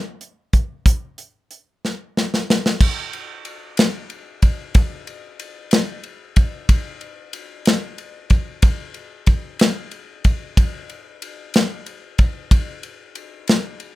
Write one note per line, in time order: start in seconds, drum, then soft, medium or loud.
0.21 closed hi-hat soft
0.53 kick medium
0.53 closed hi-hat soft
0.86 kick medium
0.86 closed hi-hat medium
1.18 closed hi-hat medium
1.51 closed hi-hat soft
1.85 snare medium
2.17 snare medium
2.34 snare medium
2.50 snare loud
2.66 snare medium
2.81 kick loud
2.81 crash loud
3.13 ride soft
3.45 ride soft
3.77 snare loud
3.77 ride medium
4.10 ride soft
4.42 kick medium
4.42 ride medium
4.74 kick loud
4.74 ride medium
5.07 ride soft
5.40 ride medium
5.71 snare loud
5.71 ride medium
6.04 ride soft
6.36 kick medium
6.36 ride medium
6.69 kick loud
6.69 ride medium
7.01 ride soft
7.33 ride medium
7.66 snare loud
7.66 ride medium
7.98 ride soft
8.30 kick medium
8.30 ride medium
8.62 kick loud
8.62 ride medium
8.94 ride soft
9.26 kick medium
9.26 ride soft
9.59 snare loud
9.59 ride medium
9.91 ride soft
10.24 kick medium
10.24 ride medium
10.57 kick loud
10.57 ride medium
10.90 ride soft
11.22 ride medium
11.54 snare loud
11.54 ride medium
11.86 ride soft
12.18 kick medium
12.18 ride medium
12.51 kick loud
12.51 ride medium
12.83 ride soft
13.15 ride medium
13.48 snare loud
13.48 ride medium
13.80 ride soft